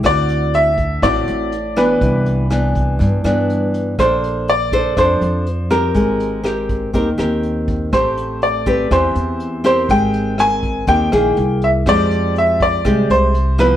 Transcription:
<<
  \new Staff \with { instrumentName = "Grand piano" } { \time 4/4 \key d \dorian \tempo 4 = 122 d''4 e''4 d''4. b'8~ | b'4 r2. | c''4 d''4 c''4. bes'8~ | bes'4 r2. |
c''4 d''4 c''4. c''8 | g''4 aes''4 g''4. e''8 | d''4 e''8 d''4 c''4 b'8 | }
  \new Staff \with { instrumentName = "Nylon-string guitar" } { \time 4/4 \key d \dorian << { <c' e' fis'>4. r8 <c' e' fis'>4 r8 <e b d'>8~ | <e b d'>4 <e b d'>4. <e b d'>4. | <d' a' c''>4 r8 <d' a' c''>8 <d' a' c''>4 r8 <c' g' bes'>8~ | <c' g' bes'>4 <c' g' bes'>4 <c' g' bes'>8 <c' g' bes'>4. |
<c' g'>4. <c' g' b'>8 <c' g'>4. <c' g' bes'>8~ | <c' g' bes'>4 <c' bes'>4 <c' g' bes'>8 <bes e' aes'>4. | <aes c' g'>2 <aes c' g'>4 r8 <f b e'>8 | } \\ { d2 a,2 | c2 g,2 | bes2 f2 | aes2 ees2 |
a2 e2 | aes2 ees4 r4 | f2 c2 | } >> }
  \new Staff \with { instrumentName = "Upright bass" } { \clef bass \time 4/4 \key d \dorian d,2 a,,8 a,,4. | c,2 g,8 g,4. | bes,,2 f,8 f,4. | aes,,2 ees,8 ees,4. |
a,,2 e,8 e,4. | aes,,2 ees,8 bes,,8 c,4 | f,2 c,8 c,4. | }
  \new DrumStaff \with { instrumentName = "Drums" } \drummode { \time 4/4 <hh bd ss>8 hh8 hh8 <hh bd>8 <hh bd ss>8 hh8 hh8 <hh ss>8 | <hh bd>8 hh8 <hh ss>8 <hh bd>8 <hh bd>8 <hh ss>8 hh8 hh8 | <hh bd ss>8 hh8 hh8 <hh bd>8 <hh bd ss>8 hh8 hh8 <hh ss>8 | <hh bd>8 hh8 <hh ss>8 <hh bd>8 <hh bd>8 <hh ss>8 hh8 <hh bd>8 |
<hh bd ss>8 hh8 hh8 <hh bd>8 <hh bd ss>8 hh8 hh8 <hh ss>8 | <hh bd>8 hh8 <hh ss>8 <hh bd>8 <hh bd>8 <hh ss>8 hh8 hh8 | <hh bd ss>8 hh8 hh8 <hh bd>8 <hh bd ss>8 hh8 hh8 <hh ss>8 | }
>>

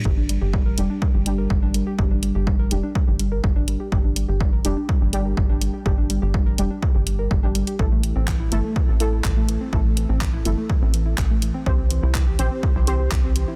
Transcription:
<<
  \new Staff \with { instrumentName = "Synth stab" } { \time 4/4 \key a \phrygian \tempo 4 = 124 <g d' g'>4. <g d' g'>4 <g d' g'>4. | <g d' g'>4. <g d' g'>2~ <g d' g'>8 | <g d' g'>4. <g d' g'>4 <g d' g'>4. | <g d' g'>4. <g d' g'>4.~ <g d' g'>16 <g d' g'>8. |
<a e' a'>4. <a e' a'>4 <a e' a'>4. | <a e' a'>4. <a e' a'>2~ <a e' a'>8 | <c' g' c''>4. <c' g' c''>4 <c' g' c''>4. | }
  \new Staff \with { instrumentName = "Synth pluck" } { \time 4/4 \key a \phrygian g16 d'16 g16 g'16 g16 bes'16 g16 d'16 g16 g'16 g16 bes'16 g16 d'16 g16 g'16 | g16 d'16 g16 g'16 g16 bes'16 g16 d'16 g16 g'16 g16 bes'16 g16 d'16 g16 g'16 | g16 d'16 g16 g'16 g16 bes'16 g16 d'16 g16 g'16 g16 bes'16 g16 d'16 g16 g'16 | g16 d'16 g16 g'16 g16 bes'16 g16 d'16 g16 g'16 g16 bes'16 g16 d'16 g16 g'16 |
e16 a16 e16 c'16 e16 e'16 e16 a16 e16 c'16 e16 e'16 e16 a16 e16 c'16 | e16 a16 e16 c'16 e16 e'16 e16 a16 e16 c'16 e16 e'16 e16 a16 e16 c'16 | e16 c'16 e16 e'16 e16 g'16 e16 c'16 e16 e'16 e16 g'16 r16 c'16 e16 e'16 | }
  \new Staff \with { instrumentName = "Analog synth bass" } { \clef bass \time 4/4 \key a \phrygian g,,8. g,,8. f,,16 r8 g,,8. g,,8. r16 | g,,8. g,,8. f,,16 r8 g,,8. g,,8. r16 | g,,8. g,,8. f,,16 r8 g,,8. g,,8. r16 | g,,8. g,,8. f,,16 r8 g,,8. g,,8. r16 |
a,,8. a,,8. g,,16 r8 a,,8. a,,8. r16 | a,,8. a,,8. g,,16 r8 a,,8. a,,8. r16 | c,8. c,8. bes,,16 r8 c,8. c,8. r16 | }
  \new DrumStaff \with { instrumentName = "Drums" } \drummode { \time 4/4 bd8 hh8 bd8 hh8 bd8 hh8 bd8 hh8 | bd8 hh8 bd8 hh8 bd8 hh8 bd8 hh8 | bd8 hh8 bd8 hh8 bd8 hh8 bd8 hh8 | bd8 hh8 bd8 hh8 bd8 hh8 bd8 hh16 hh16 |
bd8 hh8 <hc bd>8 hh8 bd8 hh8 <hc bd>8 hh8 | bd8 hh8 <hc bd>8 hh8 bd8 hh8 <hc bd>8 hh8 | bd8 hh8 <hc bd>8 hh8 bd8 hh8 <hc bd>8 hh8 | }
>>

